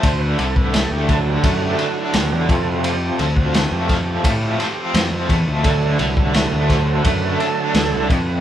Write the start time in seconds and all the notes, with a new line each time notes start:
Already playing: A3
0.03 D2 D3 C5, kick, ride
0.20 B4
0.39 C2 D3 A4, ride
0.56 B4, kick
0.72 A3 A4, snare, ride
0.91 D2 G4
1.09 D3 F#3 A3 A4, kick, ride
1.29 G4
1.43 F#2 A3 F#4, kick, ride
1.63 G4
1.78 D4, ride
1.83 F#4
2.01 E4
2.14 D2 D3 F#4, snare, ride
2.31 E2 G4
2.49 F2 C3 F3 A3 A4, kick, ride
2.67 F#4
2.84 F2 G4, ride
3.17 D2 F3 A4, ride
3.35 F#4, kick
3.53 A3, snare, ride
3.71 F2 G4
3.88 F3 A4, kick, snare, ride
4.06 G4
4.24 A2 A3, kick, ride
4.59 C4, snare, ride
4.94 F2 F3, snare, ride
5.12 F2
5.29 E2 A3, kick, ride
5.47 D2
5.62 D2 D3 F#3 A3 A4, kick, ride
5.97 C2 D3 B4, ride
6.17 kick
6.34 A3, snare, ride
6.52 D2
6.67 D3 C5, kick, ride
6.71 snare
7.02 F#2 A3 B4, kick, ride
7.36 D4 A4, ride
7.74 D2 D3, snare, ride
7.93 C2
8.08 F2 B4, kick, ride